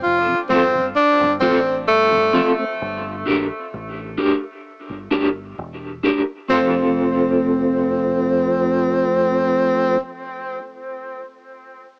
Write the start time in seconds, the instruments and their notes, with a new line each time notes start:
0.02 fingered electric bass F1, tenor saxophone F4
0.28 tonewheel organ F2 C3
0.49 fingered electric bass G1, tonewheel organ F3 A3 C4, tenor saxophone C4, clean electric guitar C4 F4 A4
0.74 tonewheel organ F2 C3
0.96 tenor saxophone D4
1.19 fingered electric bass G1, tonewheel organ F2 C3
1.40 fingered electric bass A1, tonewheel organ F3 A3 C4, tenor saxophone C4, clean electric guitar C4 F4 A4
1.87 fingered electric bass G1, tenor saxophone A3
2.11 tonewheel organ F2 C3
2.33 tonewheel organ F3 A3 C4, clean electric guitar C4 F4 A4
2.57 tonewheel organ A3 C4
2.82 fingered electric bass G1
3.26 fingered electric bass A#1, clean electric guitar D4 G4 A#4
3.74 fingered electric bass A1
4.18 clean electric guitar D4 G4 A#4
4.89 fingered electric bass G1
5.11 fingered electric bass G1, clean electric guitar D4 G4 A#4
5.58 fingered electric bass E1
6.03 clean electric guitar D4 G4 A#4
6.48 fingered electric bass F1, tonewheel organ F3 A3 C4, clean electric guitar C4 F4, tenor saxophone C4
6.53 clean electric guitar A4